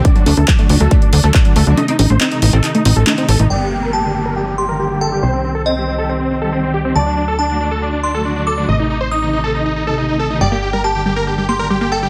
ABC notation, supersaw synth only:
X:1
M:4/4
L:1/16
Q:1/4=139
K:Gm
V:1 name="Supersaw synth"
d D D A D D D A D D D A D D A D | e E E c E E E A E E E A E E A E | d G G B G G G B G G G B G G A G | c C C A C C C A C C C A C C G C |
d D D A D D D A D D D A D D A D | e E E c E E E A E E E A E E A E | d G G B G G G B G G G B G G A G |]